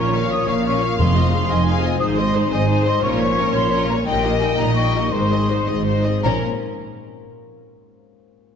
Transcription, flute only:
0, 0, Header, 1, 2, 480
1, 0, Start_track
1, 0, Tempo, 342661
1, 2811, Time_signature, 12, 3, 24, 8
1, 6191, Tempo, 365854
1, 11619, End_track
2, 0, Start_track
2, 0, Title_t, "Flute"
2, 0, Program_c, 0, 73
2, 0, Note_on_c, 0, 85, 73
2, 424, Note_off_c, 0, 85, 0
2, 445, Note_on_c, 0, 87, 74
2, 669, Note_off_c, 0, 87, 0
2, 678, Note_on_c, 0, 85, 71
2, 762, Note_off_c, 0, 85, 0
2, 936, Note_on_c, 0, 85, 69
2, 1368, Note_off_c, 0, 85, 0
2, 1377, Note_on_c, 0, 84, 74
2, 1848, Note_off_c, 0, 84, 0
2, 1861, Note_on_c, 0, 84, 78
2, 2393, Note_off_c, 0, 84, 0
2, 2803, Note_on_c, 0, 87, 83
2, 2887, Note_off_c, 0, 87, 0
2, 3050, Note_on_c, 0, 84, 73
2, 3513, Note_off_c, 0, 84, 0
2, 3521, Note_on_c, 0, 80, 70
2, 3992, Note_off_c, 0, 80, 0
2, 4010, Note_on_c, 0, 84, 79
2, 4241, Note_off_c, 0, 84, 0
2, 4247, Note_on_c, 0, 85, 82
2, 4331, Note_off_c, 0, 85, 0
2, 4499, Note_on_c, 0, 85, 78
2, 4966, Note_off_c, 0, 85, 0
2, 4974, Note_on_c, 0, 84, 81
2, 5448, Note_off_c, 0, 84, 0
2, 5458, Note_on_c, 0, 82, 72
2, 5542, Note_off_c, 0, 82, 0
2, 5679, Note_on_c, 0, 79, 75
2, 6142, Note_off_c, 0, 79, 0
2, 6151, Note_on_c, 0, 80, 73
2, 6381, Note_off_c, 0, 80, 0
2, 6389, Note_on_c, 0, 82, 71
2, 6617, Note_off_c, 0, 82, 0
2, 6625, Note_on_c, 0, 85, 66
2, 7105, Note_on_c, 0, 84, 59
2, 7125, Note_off_c, 0, 85, 0
2, 7843, Note_off_c, 0, 84, 0
2, 8573, Note_on_c, 0, 82, 69
2, 8848, Note_off_c, 0, 82, 0
2, 11619, End_track
0, 0, End_of_file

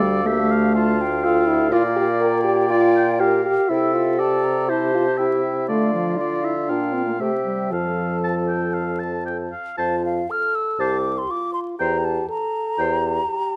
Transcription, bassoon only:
0, 0, Header, 1, 2, 480
1, 0, Start_track
1, 0, Key_signature, -1, "major"
1, 0, Tempo, 486224
1, 1702, Time_signature, 4, 2, 24, 8
1, 2668, Tempo, 496689
1, 5548, Tempo, 503778
1, 6988, Tempo, 516796
1, 9868, Tempo, 498339
1, 13015, End_track
2, 0, Start_track
2, 0, Title_t, "Bassoon"
2, 0, Program_c, 0, 70
2, 0, Note_on_c, 0, 38, 72
2, 1702, Note_on_c, 0, 46, 69
2, 1717, Note_off_c, 0, 38, 0
2, 3471, Note_off_c, 0, 46, 0
2, 3635, Note_on_c, 0, 48, 61
2, 5516, Note_off_c, 0, 48, 0
2, 5560, Note_on_c, 0, 50, 48
2, 6515, Note_on_c, 0, 46, 47
2, 6530, Note_off_c, 0, 50, 0
2, 6991, Note_off_c, 0, 46, 0
2, 6997, Note_on_c, 0, 48, 41
2, 7462, Note_off_c, 0, 48, 0
2, 7484, Note_on_c, 0, 41, 42
2, 9127, Note_off_c, 0, 41, 0
2, 9391, Note_on_c, 0, 41, 50
2, 9789, Note_off_c, 0, 41, 0
2, 10344, Note_on_c, 0, 36, 52
2, 10750, Note_off_c, 0, 36, 0
2, 11317, Note_on_c, 0, 40, 56
2, 11718, Note_off_c, 0, 40, 0
2, 12266, Note_on_c, 0, 40, 57
2, 12668, Note_off_c, 0, 40, 0
2, 13015, End_track
0, 0, End_of_file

